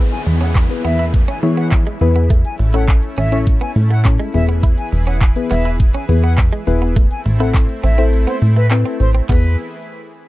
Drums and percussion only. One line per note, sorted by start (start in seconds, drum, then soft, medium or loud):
0.12 closed hi-hat soft
0.41 closed hi-hat medium
0.55 kick loud
0.55 clap loud
0.55 closed hi-hat medium
0.70 closed hi-hat soft
0.99 closed hi-hat medium
1.14 kick loud
1.14 closed hi-hat medium
1.28 closed hi-hat medium
1.58 closed hi-hat soft
1.72 kick loud
1.72 clap loud
1.72 closed hi-hat medium
1.87 closed hi-hat medium
2.16 closed hi-hat soft
2.30 kick loud
2.30 closed hi-hat medium
2.45 closed hi-hat soft
2.60 open hi-hat medium
2.74 closed hi-hat soft
2.88 kick loud
2.88 clap loud
2.88 closed hi-hat medium
3.03 closed hi-hat soft
3.17 open hi-hat medium
3.32 closed hi-hat medium
3.47 kick loud
3.47 closed hi-hat medium
3.61 closed hi-hat medium
3.76 open hi-hat medium
3.91 closed hi-hat soft
4.05 kick loud
4.05 clap loud
4.05 closed hi-hat medium
4.20 closed hi-hat medium
4.34 open hi-hat medium
4.49 closed hi-hat soft
4.63 kick loud
4.63 closed hi-hat medium
4.78 closed hi-hat soft
4.93 open hi-hat medium
5.07 closed hi-hat soft
5.21 kick loud
5.21 clap loud
5.21 clap medium
5.21 closed hi-hat medium
5.36 closed hi-hat soft
5.50 clap medium
5.50 open hi-hat medium
5.65 closed hi-hat medium
5.80 kick loud
5.80 closed hi-hat medium
5.94 closed hi-hat medium
6.09 open hi-hat medium
6.24 closed hi-hat soft
6.38 kick loud
6.38 clap loud
6.38 clap medium
6.38 closed hi-hat medium
6.53 closed hi-hat medium
6.67 open hi-hat medium
6.82 closed hi-hat soft
6.96 kick loud
6.96 closed hi-hat medium
7.11 closed hi-hat soft
7.26 open hi-hat medium
7.40 closed hi-hat soft
7.54 kick loud
7.54 clap loud
7.54 clap medium
7.54 closed hi-hat medium
7.69 closed hi-hat soft
7.83 open hi-hat medium
7.98 closed hi-hat medium
8.13 closed hi-hat medium
8.27 closed hi-hat medium
8.42 open hi-hat medium
8.57 closed hi-hat soft
8.71 clap loud
8.71 clap medium
8.71 closed hi-hat medium
8.86 closed hi-hat medium
9.00 open hi-hat medium
9.15 closed hi-hat medium
9.29 kick loud
9.29 clap medium
9.29 crash medium